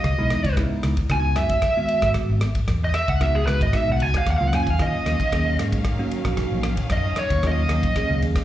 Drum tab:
RD |x-xxx-xxx-xxx-xx|x-xxx-xxx-xxx-xx|x-xxx-xxx-xxx-xx|x-xxx-xxx-xxx-xx|
SD |r-r-r-r-r-r-r--r|r-r-r-r-r-r-r--r|r-r-r-r-r-r-r--r|r-r-r-r-r-r-r--r|
BD |o--oo--oo--oo--o|o--oo--oo--oo--o|o--oo--oo--oo--o|o--oo--oo--oo--o|